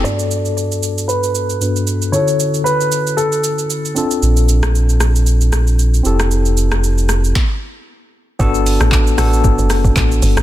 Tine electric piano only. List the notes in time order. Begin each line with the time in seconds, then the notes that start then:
0.03 G2 B3
1.61 G2 B3 D4 F#4 B4
2.12 D3 C#4 E4 F4 A4
2.21 F#4
3.95 C4 D4 F4 A4
6.03 C4 E4 G4 A4
8.39 B3 D4 F#4 A4
9.17 B3 D4 F#4 A4